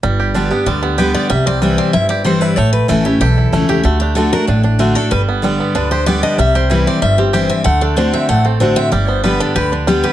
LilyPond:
<<
  \new Staff \with { instrumentName = "Steel-string acoustic guitar" } { \time 4/4 \key g \major \tempo 4 = 189 r2 d''8 g'8 b'8 d''8 | e''8 d''8 b'8 d''8 e''8 d''8 c''8 b'8 | cis''8 b'8 a'8 g'8 a'4. g'8 | fis'8 g'8 a'8 bes'8 a'8 d'8 fis'8 a'8 |
b'8 r4. b'8 c''8 d''8 ees''8 | e''8 c''8 b'8 d''8 e''8 g'8 c''8 e''8 | fis''8 a'8 c''8 e''8 fis''8 a'8 c''8 e''8 | d''8 c''8 b'8 a'8 b'8 d'8 g'8 b'8 | }
  \new Staff \with { instrumentName = "Five-string banjo" } { \time 4/4 \key g \major g8 g'8 d'8 b8 g8 b8 g'8 b8 | g8 c'8 g8 c'8 e'8 g'8 c'8 e'8 | a4 a8 e'8 g'8 e'8 a8 g'8 | a8 d'8 a8 d'8 d'8 d'8 a8 d'8 |
g8 b8 g8 b8 d'8 g'8 b8 d'8 | g8 g'8 e'8 c'8 g8 c'8 g'8 c'8 | a8 d'8 d'8 c'8 a8 c'8 d'8 c'8 | g8 b8 g8 d'8 g'8 d'8 g8 g'8 | }
  \new Staff \with { instrumentName = "Steel-string acoustic guitar" } { \time 4/4 \key g \major << { r4 <d g b g'>8 <b g'>8 r4 <d g b g'>4 | r4 <e g c' e'>4 r4 <e g c' e'>4 | r4 <e a cis' e'>8 <cis' e'>8 r4 <e a cis' e'>4 | r4 <d a d' fis'>8 <d' fis'>8 r4 <d a d' fis'>8 <d' fis'>8 |
r4 <d g b g'>4 r4 <d g b g'>4 | r4 <e g c' e'>4 r4 <e g c' e'>4 | r4 <d a c' fis'>4 r4 <d a c' fis'>4 | r4 <d g b g'>4 r4 <d g b g'>4 | } \\ { g,2 d2 | c2 g,2 | a,2 e,2 | d2 a,2 |
g,2 d2 | c2 g,2 | d2 a,2 | g,2 d2 | } >> }
  \new Staff \with { instrumentName = "Upright bass" } { \clef bass \time 4/4 \key g \major g,,2 d,2 | c,2 g,,2 | a,,4 a,,4 b,,4 cis,4 | d,2 a,,2 |
g,,2 d,2 | c,2 g,,2 | d,2 a,,2 | g,,2 d,2 | }
>>